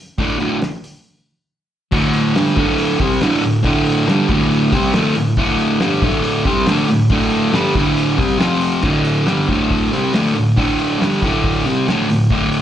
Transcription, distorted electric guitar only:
0.18 0.36 D2 medium
0.18 0.37 A2 loud
0.18 0.37 D3 loud
0.39 0.57 D2 loud
0.39 0.57 A2 medium
0.39 0.58 D3 loud
1.91 2.34 D2 loud
1.91 2.35 A2 loud
1.91 2.35 D3 loud
2.35 2.56 G2 medium
2.35 2.56 D3 medium
2.35 2.57 G3 loud
2.56 2.99 D2 medium
2.56 2.99 A2 loud
2.56 3.00 D3 medium
2.99 3.21 C3 loud
2.99 3.21 G3 loud
2.99 3.22 C4 loud
3.22 3.41 D2 loud
3.22 3.41 A2 loud
3.22 3.43 D3 loud
3.42 3.60 D2 medium
3.42 3.60 A2 medium
3.63 4.06 D2 loud
3.63 4.07 A2 loud
3.63 4.08 D3 loud
4.07 4.28 G2 medium
4.07 4.29 D3 medium
4.07 4.29 G3 loud
4.28 4.72 D2 loud
4.28 4.72 A2 loud
4.28 4.73 D3 medium
4.73 4.94 C3 medium
4.73 4.94 G3 loud
4.73 4.95 C4 loud
4.94 5.15 D2 loud
4.94 5.16 A2 loud
4.94 5.16 D3 loud
5.16 5.34 D2 medium
5.16 5.34 A2 medium
5.38 5.80 D2 loud
5.38 5.80 A2 loud
5.38 5.80 D3 loud
5.80 6.02 G2 medium
5.80 6.02 D3 loud
5.80 6.02 G3 loud
6.03 6.45 D2 medium
6.03 6.46 A2 medium
6.03 6.46 D3 loud
6.45 6.67 C3 loud
6.45 6.67 G3 loud
6.45 6.67 C4 loud
6.67 6.87 D2 loud
6.67 6.88 A2 loud
6.67 6.89 D3 loud
6.88 7.06 D2 medium
6.88 7.06 A2 medium
7.10 7.52 D2 loud
7.10 7.53 A2 loud
7.10 7.52 D3 loud
7.53 7.74 G2 loud
7.53 7.75 D3 medium
7.53 7.75 G3 loud
7.76 8.17 D2 medium
7.76 8.18 A2 medium
7.76 8.19 D3 loud
8.18 8.38 C3 loud
8.18 8.39 G3 loud
8.18 8.40 C4 loud
8.39 8.82 F2 loud
8.39 8.83 C3 loud
8.39 8.83 F3 loud
8.83 9.26 D2 medium
8.83 9.27 A2 medium
8.83 9.26 D3 loud
9.27 9.48 G2 medium
9.27 9.48 D3 medium
9.27 9.49 G3 loud
9.48 9.91 D2 medium
9.48 9.92 A2 loud
9.48 9.92 D3 loud
9.91 10.13 C3 medium
9.91 10.13 G3 loud
9.91 10.14 C4 medium
10.13 10.34 D2 loud
10.13 10.34 A2 loud
10.13 10.36 D3 loud
10.35 10.53 D2 medium
10.35 10.53 A2 medium
10.57 10.99 D2 loud
10.57 11.00 A2 loud
10.57 11.00 D3 loud
11.00 11.21 G2 medium
11.00 11.22 D3 loud
11.00 11.22 G3 loud
11.22 11.65 D2 medium
11.22 11.65 A2 medium
11.22 11.66 D3 medium
11.65 11.87 C3 loud
11.65 11.87 G3 medium
11.65 11.87 C4 loud
11.88 12.08 D2 loud
11.88 12.08 A2 loud
11.88 12.09 D3 loud
12.09 12.27 D2 medium
12.09 12.27 A2 medium
12.30 12.62 D2 medium
12.30 12.62 A2 loud
12.30 12.62 D3 loud

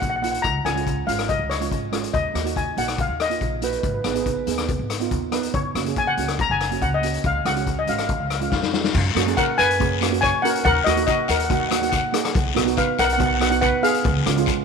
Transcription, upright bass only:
0.02 0.37 A#1 medium
0.44 0.62 C#2 medium
0.65 1.00 C#2 medium
1.07 1.34 G#1 medium
1.39 1.66 C#2 medium
1.71 2.07 G#1 medium
2.14 2.32 D#2 medium
2.34 2.70 D#2 medium
2.77 3.04 A#1 medium
3.08 3.35 D#2 medium
3.41 3.76 A#1 medium
3.83 4.01 G#1 medium
4.04 4.40 G#1 medium
4.47 4.74 D#2 medium
4.79 5.06 G#1 medium
5.11 5.47 D#2 medium
5.54 5.72 F#1 medium
5.75 6.10 F#1 medium
6.17 6.44 C#2 medium
6.49 6.76 F#1 medium
6.81 7.17 C#2 medium
7.24 7.42 C#2 medium
7.45 7.81 C#2 medium
7.88 8.06 G#1 medium
8.09 8.18 C#2 medium
8.20 8.47 C#2 medium
8.52 8.87 F2 medium
8.95 9.12 F#2 loud
9.15 9.33 F#2 medium
9.59 10.29 F#2 medium
10.65 10.83 D#2 loud
10.86 11.04 D#2 medium
11.29 12.00 D#2 medium
12.35 12.53 B1 loud
12.56 12.74 B1 medium
12.99 13.70 B1 medium
14.05 14.23 C#2 loud
14.26 14.44 C#2 medium

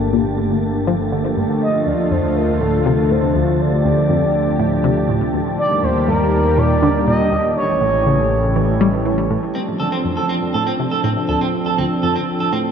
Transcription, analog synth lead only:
1.62 1.88 D#5 loud
1.87 2.13 D5 loud
2.11 2.37 C5 loud
2.36 2.60 A#4 medium
2.61 2.84 A4 loud
2.86 3.12 A4 medium
3.10 3.62 C5 loud
3.60 5.09 D5 loud
5.59 5.85 D5 loud
5.84 6.08 C5 medium
6.08 6.59 A#4 loud
6.58 7.07 D5 loud
7.08 7.54 D#5 loud
7.57 9.02 C#5 loud

